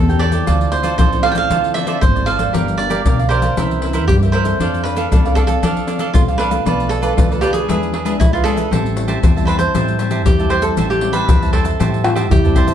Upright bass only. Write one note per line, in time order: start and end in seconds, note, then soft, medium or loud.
0.00 0.40 E2 medium
0.48 0.92 D2 medium
0.99 1.43 A1 medium
1.51 2.04 D3 medium
2.02 2.46 G#1 medium
2.54 2.98 G1 medium
3.05 3.49 B1 medium
3.57 4.09 C2 medium
4.09 4.53 G2 medium
4.60 5.04 F2 medium
5.12 5.55 C2 medium
5.63 6.16 F3 medium
6.14 6.58 C2 medium
6.66 7.10 B1 medium
7.17 7.61 D2 medium
7.68 8.20 E2 medium
8.20 8.64 A#1 medium
8.71 9.15 A1 medium
9.23 9.67 E2 medium
9.74 10.26 A2 medium
10.26 10.70 E2 medium
10.77 11.21 A1 medium
11.29 11.72 E2 medium
11.80 12.32 A2 medium
12.32 12.74 E2 medium